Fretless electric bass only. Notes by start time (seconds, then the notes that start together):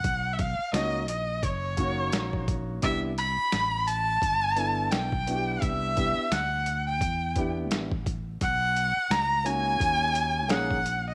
0.04 B1
0.59 muted fretless electric bass stroke
0.73 C#2
1.08 A#1
1.43 F#1
2.13 A#1
2.83 C2
3.53 A1
4.22 G1
4.92 B1
5.62 C2
6.17 muted fretless electric bass stroke
6.31 D2
7.01 E2
7.71 A1
8.41 B1
9.10 C#2
9.80 D#2
10.49 A#1